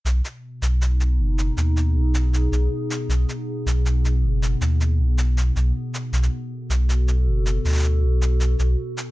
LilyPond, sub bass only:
\new Staff \with { instrumentName = "Sub bass" } { \clef bass \time 4/4 \key b \major \tempo 4 = 79 b,,16 r8 b,,8. fis,,8 dis,8 b,,8. b,,16 r8 | b,,16 r8 b,,8. fis,,8 dis,8 b,,8. b,,16 r8 | b,,16 r8 b,,8. fis,,8 d,8 b,,8. b,,16 r8 | }